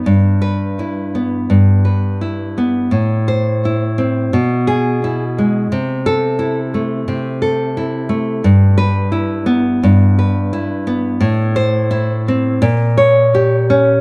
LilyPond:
\new Staff \with { instrumentName = "Nylon-string guitar" } { \time 4/4 \key e \minor \tempo 4 = 86 << { r8 b'4 r2 r8 | r8 c''4 r4 gis'4 r8 | r8 a'4 r2 r8 | r8 b'4 r2 r8 |
r8 c''4 r4 cis''4 r8 | } \\ { g,4 e'8 b8 g,8 b'8 e'8 b8 | a,4 e'8 c'8 b,4 e'8 gis8 | c4 e'8 a8 c8 a'8 e'8 a8 | g,4 e'8 b8 g,8 b'8 e'8 b8 |
a,4 e'8 c'8 ais,4 g'8 cis'8 | } >> }